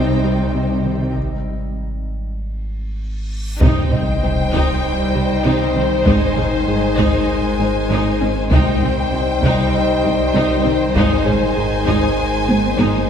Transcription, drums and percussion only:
3.61 taiko loud
3.92 taiko low-mid medium
4.53 taiko medium
6.06 taiko loud
6.37 taiko low-mid medium
6.98 taiko medium
8.51 taiko loud
8.82 taiko low-mid medium
9.43 taiko medium
10.96 taiko medium
11.27 taiko low-mid medium
11.87 taiko medium
12.49 taiko high medium
12.79 taiko high medium

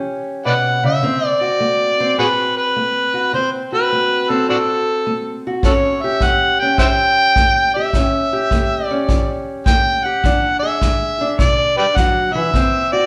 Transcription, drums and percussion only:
5.63 kick medium
6.21 kick medium
6.78 kick medium
7.36 kick medium
7.93 kick medium
8.51 kick medium
9.09 kick medium
9.66 kick medium
10.24 kick medium
10.82 kick medium
11.39 kick medium
11.96 kick medium
12.54 kick medium

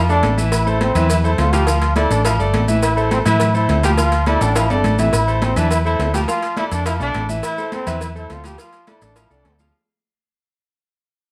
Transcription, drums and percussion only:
0.09 high conga soft
0.09 maracas soft
0.23 cowbell medium
0.23 high conga medium
0.23 low timbale medium
0.23 low agogo medium
0.23 maracas soft
0.38 high conga medium
0.38 maracas medium
0.52 cowbell loud
0.52 high conga soft
0.52 low agogo loud
0.52 maracas medium
0.66 high conga soft
0.66 maracas soft
0.81 cowbell medium
0.81 high conga medium
0.81 low timbale medium
0.81 low agogo medium
0.81 maracas soft
0.95 cowbell medium
0.95 high conga soft
0.95 low conga medium
0.95 low agogo loud
0.95 maracas medium
1.10 cowbell loud
1.10 high conga soft
1.10 low conga medium
1.10 low agogo medium
1.10 maracas medium
1.24 high conga soft
1.24 maracas soft
1.38 cowbell medium
1.38 high conga medium
1.38 low timbale medium
1.38 low agogo medium
1.38 maracas soft
1.53 cowbell medium
1.53 low agogo loud
1.53 maracas medium
1.67 cowbell loud
1.67 high conga soft
1.67 maracas medium
1.82 cowbell medium
1.82 high conga soft
1.82 maracas soft
1.96 cowbell medium
1.96 high conga loud
1.96 low timbale medium
1.96 low agogo loud
1.96 maracas soft
2.11 cowbell medium
2.11 maracas medium
2.25 cowbell loud
2.25 high conga soft
2.25 low agogo loud
2.25 maracas medium
2.39 high conga soft
2.39 maracas soft
2.54 cowbell medium
2.54 high conga medium
2.54 low timbale medium
2.54 low agogo medium
2.54 maracas soft
2.68 high conga medium
2.68 maracas medium
2.83 cowbell loud
2.83 high conga soft
2.83 low agogo loud
2.83 maracas medium
2.97 maracas soft
3.11 cowbell medium
3.11 high conga loud
3.11 low timbale medium
3.11 low agogo medium
3.11 maracas soft
3.26 cowbell medium
3.26 high conga soft
3.26 low conga medium
3.26 low agogo loud
3.26 maracas medium
3.40 cowbell loud
3.40 high conga soft
3.40 low conga medium
3.40 low agogo medium
3.40 maracas medium
3.55 high conga soft
3.55 maracas soft
3.69 cowbell medium
3.69 high conga medium
3.69 low timbale medium
3.69 low agogo medium
3.69 maracas soft
3.83 cowbell medium
3.83 high conga medium
3.83 low agogo loud
3.83 maracas medium
3.98 cowbell loud
3.98 high conga soft
3.98 maracas medium
4.12 cowbell medium
4.12 high conga soft
4.12 maracas soft
4.26 cowbell medium
4.26 high conga loud
4.26 low timbale medium
4.26 low agogo loud
4.26 maracas soft
4.41 cowbell medium
4.41 high timbale loud
4.41 maracas medium
4.56 cowbell loud
4.56 high conga soft
4.56 high timbale loud
4.56 low agogo loud
4.56 maracas medium
4.70 high conga soft
4.70 low timbale medium
4.70 maracas soft
4.84 cowbell medium
4.84 high conga medium
4.84 low agogo medium
4.84 maracas soft
4.99 high conga medium
4.99 low timbale loud
4.99 maracas medium
5.13 cowbell loud
5.13 low agogo loud
5.13 maracas medium
5.28 maracas soft
5.42 cowbell medium
5.42 high conga loud
5.42 low timbale medium
5.42 low agogo medium
5.42 maracas soft
5.56 cowbell medium
5.56 high conga soft
5.56 low conga medium
5.56 low agogo loud
5.56 maracas medium
5.71 cowbell loud
5.71 high conga soft
5.71 low agogo medium
5.71 maracas medium
5.85 high conga soft
5.85 maracas soft
5.99 cowbell medium
5.99 high conga medium
5.99 low timbale medium
5.99 low agogo medium
5.99 maracas soft
6.14 cowbell medium
6.14 high conga medium
6.14 low agogo loud
6.14 maracas medium
6.28 cowbell loud
6.28 high conga soft
6.28 maracas medium
6.43 cowbell medium
6.43 high conga soft
6.43 maracas soft
6.57 cowbell medium
6.57 high conga loud
6.57 low timbale medium
6.57 low agogo loud
6.57 maracas soft
6.72 cowbell medium
6.72 maracas medium
6.85 cowbell loud
6.85 high conga soft
6.85 low agogo loud
6.85 maracas medium
7.00 high conga soft
7.00 maracas soft
7.14 cowbell medium
7.14 high conga medium
7.14 low timbale medium
7.14 low agogo medium
7.14 maracas soft
7.29 high conga medium
7.29 maracas medium
7.43 cowbell loud
7.43 high conga soft
7.43 low agogo loud
7.43 maracas medium
7.58 high conga soft
7.58 maracas soft
7.72 cowbell medium
7.72 high conga loud
7.72 low timbale medium
7.72 low agogo medium
7.72 maracas soft
7.87 cowbell medium
7.87 high conga soft
7.87 low conga medium
7.87 low agogo loud
7.87 maracas medium
8.01 cowbell loud
8.01 high conga soft
8.01 low conga medium
8.01 low agogo medium
8.01 maracas medium
8.15 high conga soft
8.15 maracas soft
8.30 cowbell medium
8.30 high conga medium
8.30 low timbale medium
8.30 low agogo medium
8.30 maracas soft
8.44 cowbell medium
8.44 high conga medium
8.44 low agogo loud
8.44 maracas medium
8.58 cowbell loud
8.58 maracas medium
8.73 cowbell medium
8.73 high conga soft
8.73 maracas soft
8.87 cowbell medium
8.87 high conga loud
8.87 low timbale medium
8.87 low agogo loud
8.87 maracas soft
9.02 cowbell medium
9.02 maracas medium
9.16 cowbell loud
9.16 high conga soft
9.16 low agogo loud
9.16 maracas medium
9.30 high conga soft
9.30 high timbale medium
9.30 maracas soft
9.45 cowbell medium
9.45 high conga medium
9.45 low agogo medium
9.45 maracas soft
9.50 low timbale medium
9.59 high conga medium
9.59 low timbale medium
9.59 maracas medium

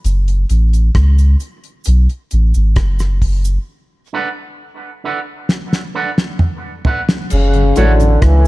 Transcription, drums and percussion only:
0.04 closed hi-hat medium
0.04 cabasa medium
0.28 closed hi-hat medium
0.49 closed hi-hat medium
0.49 cabasa medium
0.73 closed hi-hat medium
0.73 cabasa medium
0.95 kick loud
0.95 cross-stick loud
0.95 closed hi-hat medium
1.18 closed hi-hat soft
1.18 cabasa medium
1.40 closed hi-hat medium
1.40 cabasa medium
1.64 closed hi-hat soft
1.84 closed hi-hat loud
1.84 cabasa medium
2.09 closed hi-hat soft
2.31 closed hi-hat medium
2.31 cabasa soft
2.54 closed hi-hat soft
2.54 cabasa medium
2.76 kick loud
2.76 cross-stick loud
2.76 closed hi-hat medium
2.99 cross-stick medium
2.99 closed hi-hat medium
2.99 cabasa medium
3.22 kick medium
3.22 open hi-hat medium
3.45 closed hi-hat medium
3.45 cabasa medium
5.49 snare medium
5.73 snare soft
6.18 snare medium
6.39 mid tom medium
6.85 floor tom medium
7.09 snare medium
7.30 crash medium
7.30 cabasa medium
7.53 closed hi-hat medium
7.76 closed hi-hat medium
7.76 cabasa medium
8.00 closed hi-hat medium
8.00 cabasa medium
8.22 kick loud
8.22 cross-stick loud
8.22 closed hi-hat medium

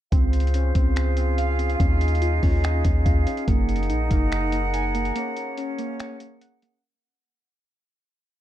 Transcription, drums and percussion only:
0.12 kick loud
0.12 closed hi-hat medium
0.33 closed hi-hat medium
0.40 closed hi-hat soft
0.47 closed hi-hat soft
0.54 closed hi-hat medium
0.75 kick loud
0.75 closed hi-hat medium
0.96 finger snap loud
0.96 closed hi-hat medium
1.17 closed hi-hat medium
1.38 closed hi-hat medium
1.59 closed hi-hat medium
1.70 closed hi-hat soft
1.80 kick loud
1.80 closed hi-hat medium
2.01 closed hi-hat medium
2.08 closed hi-hat soft
2.15 closed hi-hat soft
2.22 closed hi-hat medium
2.43 kick loud
2.43 open hi-hat medium
2.64 finger snap loud
2.64 closed hi-hat medium
2.85 kick medium
2.85 closed hi-hat medium
3.06 kick loud
3.06 closed hi-hat medium
3.27 closed hi-hat medium
3.37 closed hi-hat soft
3.48 kick loud
3.48 closed hi-hat medium
3.69 closed hi-hat medium
3.76 closed hi-hat soft
3.83 closed hi-hat soft
3.90 closed hi-hat medium
4.11 kick loud
4.11 closed hi-hat medium
4.32 finger snap loud
4.32 closed hi-hat medium
4.52 closed hi-hat medium
4.74 closed hi-hat medium
4.95 closed hi-hat medium
5.05 closed hi-hat soft
5.16 closed hi-hat medium
5.37 closed hi-hat medium
5.58 closed hi-hat medium
5.79 closed hi-hat medium
6.00 finger snap loud
6.00 closed hi-hat medium
6.20 closed hi-hat medium
6.41 closed hi-hat medium
6.62 closed hi-hat medium

